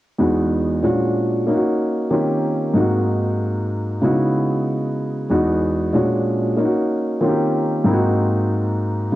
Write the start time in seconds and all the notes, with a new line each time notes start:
0.19 E2 G#3 B3 D#4 F#4
0.83 A#2 G#3 C#4 D4 F#4
1.46 A#3 C#4 D#4 F4
1.55 F#4
2.10 D#3 A#3 C4 C#4 F4 G4
2.74 G#2 A#3 C4 D#4 F#4
4.01 C#3 G#3 B3 D#4 E4 F#4
5.30 E2 G#3 B3 D#4 F#4
5.93 A#2 G#3 C#4 D4 F#4
6.57 A#3 C#4 D#4 F4
6.65 F#4
7.21 D#3 A#3 C4 C#4 F4 F#4
7.29 G4
7.84 G#2 A#3 C4 D#4 E4
7.94 F#4
9.12 C#3